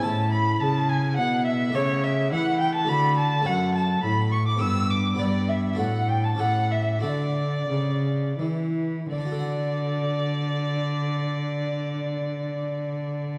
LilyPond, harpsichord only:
<<
  \new Staff \with { instrumentName = "Harpsichord" } { \time 3/4 \key a \major \tempo 4 = 99 <cis' e' e''>2. | \key d \major <a g' e''>2 <a fis' d''>4 | <a a' cis''>2 <b g' b'>4 | <b g' b'>4 <d' fis' a'>4 <cis' g' a'>4 |
<d' fis' a'>2. | <d d' fis' a' fis''>2.~ | <d d' fis' a' fis''>2. | }
  \new Staff \with { instrumentName = "Harpsichord" } { \clef bass \time 3/4 \key a \major a,4 cis4 b,4 | \key d \major cis4 e4 d4 | fis,4 a,4 g,4 | g,4 a,4 a,4 |
d4 cis4 e4 | r2. | r2. | }
>>